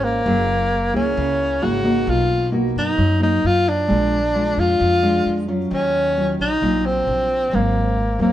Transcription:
0.00 0.22 G#1 medium
0.00 0.23 F3 soft
0.00 0.94 A#3 medium
0.00 0.21 C#4 medium
0.00 0.21 G#4 soft
0.00 0.21 C5 medium
0.26 0.89 F#1 medium
0.26 1.14 F#3 soft
0.26 0.70 A#3 soft
0.26 0.71 E4 soft
0.26 0.71 G#4 soft
0.93 1.14 C#2 medium
0.93 1.58 A#3 soft
0.93 1.65 C#4 medium
0.93 1.58 E4 soft
0.93 1.58 G#4 medium
1.17 1.59 C#2 medium
1.17 2.05 C#3 soft
1.62 2.04 G#1 medium
1.62 1.80 A#3 soft
1.62 1.81 E4 soft
1.62 2.11 F#4 medium
1.62 1.81 G#4 soft
1.84 2.26 A#3 medium
1.84 2.26 D#4 medium
1.84 2.26 F#4 medium
2.06 2.71 B1 medium
2.06 2.95 B2 soft
2.06 2.49 F4 medium
2.52 2.97 A#3 soft
2.52 2.97 D#4 soft
2.52 2.97 F#4 medium
2.76 2.96 F#2 medium
2.76 3.19 D#4 medium
2.97 3.40 F#2 medium
2.97 3.86 F#3 soft
3.20 3.84 A#3 soft
3.20 3.84 D#4 medium
3.20 3.48 D#4 medium
3.20 3.84 F#4 soft
3.44 3.86 F#2 medium
3.44 3.70 F4 medium
3.69 4.61 D4 medium
3.88 4.53 A#1 medium
3.88 4.76 A#2 soft
3.88 4.17 G#3 soft
3.88 4.17 D4 soft
3.88 4.17 F4 medium
4.34 4.98 G#3 soft
4.34 4.98 D4 soft
4.34 4.99 F4 soft
4.57 4.78 F2 medium
4.57 5.49 F4 medium
4.79 5.22 F2 medium
4.79 5.68 F3 soft
5.02 5.44 G#3 soft
5.02 5.44 D4 medium
5.02 5.44 F4 medium
5.26 5.67 F2 medium
5.48 6.12 F#3 medium
5.48 6.12 C#4 medium
5.48 6.12 F4 medium
5.71 6.34 D#2 medium
5.71 6.59 D#3 soft
5.71 6.36 C#4 medium
6.17 6.45 F#3 soft
6.17 6.45 C#4 soft
6.17 6.46 F4 soft
6.39 6.60 A#1 medium
6.39 6.87 D#4 medium
6.61 7.04 A#1 medium
6.61 7.50 A#2 soft
6.61 7.22 F#3 soft
6.61 7.22 F4 soft
6.86 7.56 C4 medium
7.08 7.49 A#1 medium
7.51 8.16 G#1 medium
7.51 8.32 G#2 soft
7.51 7.96 F#3 soft
7.51 7.97 A#3 soft
7.51 8.21 A#3 medium
7.51 7.97 C4 soft
8.19 8.32 D#2 medium
8.19 8.32 F#3 medium
8.19 8.32 A#3 medium
8.19 8.32 C4 medium

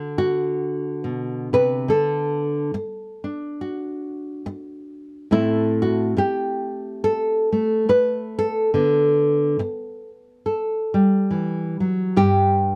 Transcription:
0.00 1.87 D3 medium
0.00 1.85 D4 medium
0.00 0.17 F#4 medium
0.18 1.89 F#4 medium
1.04 1.53 B2 medium
1.53 1.89 C3 medium
1.53 1.89 B4 medium
1.88 2.73 D3 medium
1.88 5.32 A4 medium
2.74 muted nylon-string guitar stroke medium
3.24 5.27 D4 medium
3.61 5.28 F#4 soft
4.46 muted nylon-string guitar stroke medium
5.31 6.16 A2 medium
5.31 7.51 A3 soft
5.31 8.70 C4 soft
5.31 6.67 E4 medium
5.82 6.18 F#4 medium
6.17 7.89 G4 medium
6.17 muted nylon-string guitar stroke medium
7.04 7.89 A4 medium
7.52 8.70 A3 medium
7.89 8.38 B4 medium
7.89 muted nylon-string guitar stroke medium
8.39 10.09 A4 medium
8.74 9.59 D3 medium
8.74 12.75 B3 soft
9.59 muted nylon-string guitar stroke medium
10.46 12.12 A4 soft
10.94 12.75 G3 medium
11.31 11.80 E3 medium
11.80 12.16 F#3 medium
12.16 12.75 G2 medium
12.16 12.75 G4 loud

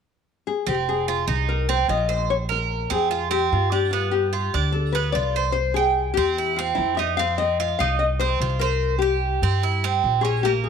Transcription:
0.47 0.68 G#4 medium
0.67 1.24 F1 medium
0.67 1.06 C4 medium
0.67 0.74 G4 medium
0.89 1.45 G#4 medium
1.08 1.27 F4 medium
1.28 1.85 C2 medium
1.28 1.67 D#4 medium
1.49 1.70 A#4 medium
1.69 1.89 C4 medium
1.69 1.89 C5 medium
1.88 2.85 A#1 medium
1.88 2.09 F4 medium
1.88 2.27 D#5 medium
2.09 2.49 C5 medium
2.30 2.36 C#5 medium
2.49 2.89 A#4 medium
2.90 3.48 F2 medium
2.90 3.10 C4 medium
2.90 3.29 G#4 medium
3.11 3.30 F4 medium
3.31 3.71 C4 medium
3.31 3.52 G4 medium
3.52 4.48 G2 medium
3.52 3.71 F4 medium
3.72 3.92 D4 medium
3.72 3.90 G4 medium
3.91 4.32 B3 medium
3.91 4.11 F4 medium
4.11 4.72 G4 medium
4.33 4.53 F4 medium
4.54 5.11 D2 medium
4.54 4.94 D4 medium
4.72 4.94 A4 medium
4.92 5.15 B3 medium
4.92 5.12 B4 medium
5.12 6.11 C2 medium
5.12 5.35 F4 medium
5.12 5.52 D5 medium
5.36 5.75 C5 medium
5.52 5.73 C5 medium
5.74 6.13 G#4 medium
5.74 6.16 G5 medium
6.14 6.74 E2 medium
6.14 6.37 C4 medium
6.14 6.57 G4 medium
6.38 6.58 E4 medium
6.56 6.98 C4 medium
6.56 6.78 F4 medium
6.75 7.74 F2 medium
6.75 6.97 E4 medium
6.97 7.18 D#4 medium
6.97 7.17 E5 medium
7.17 7.59 C4 medium
7.17 7.37 F5 loud
7.38 7.78 D#5 loud
7.60 7.79 F4 medium
7.79 8.37 C2 medium
7.79 8.20 D#4 medium
7.79 7.98 F5 medium
7.99 8.05 D#5 medium
8.20 8.40 C4 medium
8.20 8.62 C5 medium
8.40 9.36 C2 medium
8.40 8.61 F4 medium
8.59 8.98 A#4 medium
8.59 9.01 C5 medium
8.99 10.21 G4 medium
8.99 9.42 G4 medium
9.42 10.00 G2 medium
9.42 9.63 C4 medium
9.63 9.83 E4 medium
9.84 10.23 C4 medium
10.04 10.69 A#1 medium
10.21 10.44 C#4 medium
10.21 10.43 G#4 medium
10.43 10.69 A#3 medium
10.43 10.49 G4 medium
10.64 10.69 G#4 medium

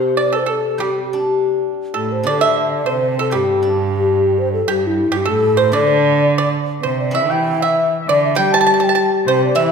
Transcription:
0.00 1.60 C3 medium
0.00 0.33 G3 soft
0.00 0.15 C5 medium
0.00 0.18 C5 medium
0.17 0.32 D5 medium
0.17 0.38 D5 medium
0.33 0.45 A4 medium
0.33 0.40 A4 medium
0.39 0.53 C5 medium
0.46 0.78 A4 medium
0.51 0.84 A4 medium
0.78 2.71 G3 soft
0.78 1.74 G4 medium
0.83 1.72 G4 medium
1.13 2.41 D4 soft
1.94 2.29 A2 medium
1.94 2.23 A4 medium
1.94 2.14 A4 medium
2.12 2.30 C5 medium
2.23 4.06 D3 soft
2.23 2.86 D3 medium
2.23 2.41 D5 medium
2.28 2.45 D5 medium
2.41 2.84 E5 medium
2.41 2.73 E5 medium
2.74 2.92 D5 medium
2.86 3.36 C3 medium
2.86 3.15 C5 medium
2.86 3.19 C5 medium
3.19 3.33 A4 medium
3.19 3.37 A4 medium
3.31 4.66 G2 medium
3.31 5.11 G3 medium
3.31 4.19 G4 medium
3.35 4.40 G4 medium
3.62 4.82 D4 soft
4.19 4.63 E4 medium
4.39 4.52 C5 medium
4.53 4.65 A4 medium
4.65 5.09 G2 medium
4.65 5.09 G4 medium
4.65 4.72 A4 medium
4.71 4.88 G4 medium
4.87 5.18 E4 medium
5.10 5.29 G2 medium
5.10 5.26 G4 medium
5.17 5.30 G4 medium
5.25 5.74 A2 medium
5.25 5.55 A4 medium
5.25 5.61 A4 medium
5.57 5.72 C5 medium
5.57 5.74 C5 medium
5.72 7.61 D3 medium
5.72 6.55 D3 loud
5.72 6.36 D5 medium
5.72 6.52 D5 medium
6.38 6.54 D5 medium
6.81 7.16 C3 medium
6.81 6.97 C5 medium
6.81 7.12 C5 medium
7.00 7.17 D5 medium
7.11 8.96 E3 soft
7.11 7.92 E3 medium
7.11 7.31 E5 medium
7.11 7.58 E5 medium
7.16 7.33 E5 medium
7.30 7.54 G5 medium
7.30 7.65 G5 medium
7.54 7.62 G5 medium
7.60 7.92 E5 medium
7.60 7.91 E5 medium
7.60 7.94 E5 medium
8.01 8.09 E5 medium
8.07 8.39 D3 medium
8.07 8.38 D5 medium
8.07 8.37 D5 medium
8.07 8.23 D5 medium
8.25 8.38 E5 medium
8.35 9.72 G3 medium
8.35 9.12 G3 medium
8.35 8.51 G5 medium
8.35 8.53 G5 loud
8.39 8.57 G5 medium
8.52 9.12 A5 medium
8.52 8.59 A5 medium
8.52 8.77 A5 medium
8.61 8.65 A5 medium
8.66 8.73 A5 medium
8.74 8.79 A5 soft
8.74 8.85 A5 medium
8.80 8.87 A5 medium
8.84 9.13 G5 medium
8.89 8.94 A5 medium
8.95 9.02 A5 medium
9.26 9.55 C3 medium
9.26 9.43 C5 medium
9.26 9.44 C5 medium
9.26 9.55 C5 medium
9.42 9.57 D5 medium
9.42 9.58 D5 medium
9.55 9.72 E3 medium
9.55 9.72 E5 medium
9.55 9.72 E5 loud
9.55 9.72 E5 medium

